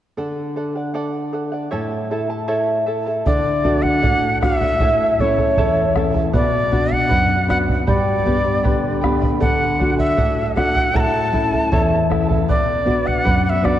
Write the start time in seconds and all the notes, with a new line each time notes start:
0.17 D3 A4 D5 F#5
0.56 A4 D5 F#5
0.75 D5 F#5
0.94 A4 D5 F#5
1.33 A4 D5 F#5
1.52 D5 F#5
1.71 A2 E4 A4 C#5 E5 A5
2.11 E4 A4 E5 A5
2.30 E4 A4 A5
2.48 E4 A4 C#5 E5 A5
2.86 E4 A4 E5 A5
3.06 E4 A4 A5
3.26 D3 A4 D5 F#5, bombo low
3.64 A3 D4 F#4 A4 D5 F#5, bombo low
3.83 D5 F#5, bombo low
4.03 A2 A4 D5 F#5, bombo low
4.41 A3 D4 F#4 A4 D5 E5 F#5, bombo rim, bombo low
4.61 D5 F#5, bombo low
4.80 A2 E4 A4 C#5 E5 A5, bombo low
5.18 A3 C#4 E4 A4 C#5 E5 A5, bombo low
5.38 E4 A4 A5, bombo low
5.58 E2 E4 A4 C#5 E5 A5, bombo low
5.95 A3 C#4 E4 A4 E5 A5, bombo rim, bombo low
6.14 E4 A4 A5, bombo low
6.33 B2 B4 D5 F#5, bombo low
6.71 B3 D4 F#4 B4 D5 F#5, bombo low
6.91 D5 F#5, bombo low
7.09 F#2 B4 D5 F#5, bombo low
7.48 B3 D4 F#4 B4 D5 F#5, bombo rim, bombo low
7.68 D5 F#5, bombo low
7.87 G2 G4 B4 D5 G5 B5, bombo low
8.26 B3 D4 G4 B4 D5 G5 B5, bombo low
8.44 B4 D5 B5
8.63 D3 G4 B4 D5 G5 B5, bombo low
9.01 B3 D4 G4 B4 D5 G5 B5, bombo rim, bombo low
9.22 B4 D5 B5, bombo low
9.40 D3 A4 D5 F#5, bombo low
9.79 A3 D4 F#4 A4 D5 F#5, bombo low
9.97 D5 E5 F#5, bombo low
10.17 A2 A4 D5 F#5, bombo low
10.55 A3 D4 F#4 A4 D5 F#5, bombo rim, bombo low
10.75 D5 F#5, bombo low
10.93 A2 E4 A4 C#5 E5 A5 A#5, bombo low
11.00 A5
11.32 A3 C#4 E4 A4 E5 A5, bombo low
11.52 E4 A4 A5, bombo low
11.72 E2 E4 A4 C#5 E5 A5, bombo low
12.09 A3 C#4 E4 A4 E5 A5, bombo rim, bombo low
12.28 E4 A4 A5, bombo low
12.48 B2 B4 D5 F#5, bombo low
12.85 B3 D4 F#4 B4 D5 F#5, bombo low
13.06 D5 F#5, bombo low
13.24 F#2 B4 D5 F#5, bombo low
13.45 F#5
13.50 E5
13.62 B3 D4 F#4 B4 D5 F#5, bombo rim, bombo low